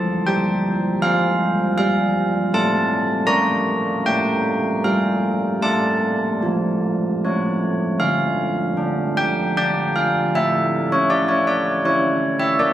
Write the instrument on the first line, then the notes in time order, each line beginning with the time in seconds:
church bells
Already playing: C5 A5
0.27 G3 G5
1.02 F3 C5 F5
1.78 G3 F5
2.54 A3 A5
3.27 A#3 D5 A#5
4.06 A3 G5
4.84 G3 F5
5.62 A3 D5 A5
6.42 F3
7.25 A3 C#5
8.00 D3 F5
8.77 D4
9.17 G5
9.57 D4 D5 G5
9.96 F5
10.35 A3 E5
10.92 C#5
11.10 E4 D5
11.28 C#5
11.47 D5
11.85 E4 C#5
12.40 E5
12.59 A#3 D5